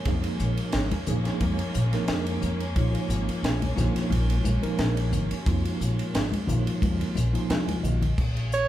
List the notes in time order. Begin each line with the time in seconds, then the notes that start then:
Already playing: G#3 A#3 C#4
0.05 F2 F3 A#3 D#4 G#4, kick, ride
0.24 ride
0.39 A#1, hi-hat pedal
0.57 ride
0.72 G#1, snare, ride
0.91 ride, high conga
1.06 A#1 F3 A#3 D#4 G#4, hi-hat pedal, low conga
1.25 snare, ride
1.41 F2, kick, ride, high conga
1.59 ride
1.74 A#1, hi-hat pedal
1.93 F3 A#3 D#4 A#4, snare, ride
2.08 F2, snare, ride
2.27 ride
2.42 F2, hi-hat pedal, low conga
2.60 ride
2.76 A#1 F3 A#3 D#4 F4, kick, ride
2.95 ride
3.09 G#1, hi-hat pedal
3.28 muted upright bass stroke, ride
3.43 A#1, snare, ride
3.62 ride, high conga
3.76 A#1 F3 A#3 D#4 F4, snare, hi-hat pedal, low conga
3.96 snare, ride
4.10 A#1, ride, high conga
4.30 ride
4.45 A#1, hi-hat pedal, high conga
4.62 F3 A#3 D#4 A#4, ride
4.78 A#1, snare, ride
4.97 ride
5.12 G#1, hi-hat pedal, low conga
5.31 muted upright bass stroke, ride
5.46 F2 F3 A#3 D#4 F4, kick, ride
5.65 ride
5.80 A#1, hi-hat pedal
5.99 ride
6.14 G#1, snare, ride
6.32 ride, high conga
6.47 A#1 F3 A#3 D#4 F4, hi-hat pedal, low conga
6.67 ride
6.82 F2, kick, ride, high conga
7.00 ride, low conga
7.15 A#1, hi-hat pedal, high conga
7.33 F3 A#3 D#4 F4, ride
7.50 C2 G#5, snare, ride, high conga
7.68 ride, high conga
7.83 A#1 D#5, hi-hat pedal, low conga
8.02 ride, low conga
8.18 A#1, kick, crash
8.37 ride
8.52 C#5, hi-hat pedal